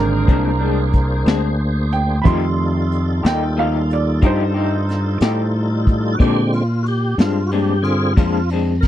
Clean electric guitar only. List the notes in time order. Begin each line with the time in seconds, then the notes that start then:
0.28 A#2 G#3 C4 D4
0.61 G#3 C4 D4
1.27 G#3 C4 D4
2.24 F3 A3 D#4 G4
3.23 A3 D#4 G4
3.57 F3 A3 D#4 G4
4.22 F3 A3 D#4 G4
4.54 A3 D#4 G4
5.22 A3 D#4 G4
6.19 A#2 G#3 C4 D4
7.19 G#3 C4 D4
7.52 A#2 G#3 C4 D4
8.17 A#2 G#3 C4 D4
8.51 G#3 C4 D4